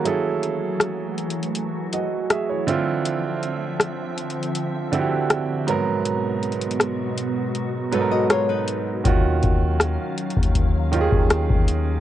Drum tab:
HH |x-----------x-----------x-----------x---x---x---x-----------x-----------x-----------x-----------|x-----------x-----------x-----------x---x---x---x-----------x-----------x-----------x-----------|x-----------x--x--x--x--x-----------x-----------x-----------x-----------x-----------x-----------|x-----------x-----------x-----------x---x---x---x-----------x-----------x-----------x-----------|
SD |------------------------r-----------------------------------------------r-----------------------|------------------------r-----------------------------------------------r-----------------------|------------------------r-----------------------------------------------r-----------------------|------------------------r-----------------------------------------------r-----------------------|
BD |------------------------------------------------------------------------------------------------|------------------------------------------------------------------------------------------------|------------------------------------------------------------------------------------------------|o-----------o-----------------------------o-----o-----------------o-----------o-----------------|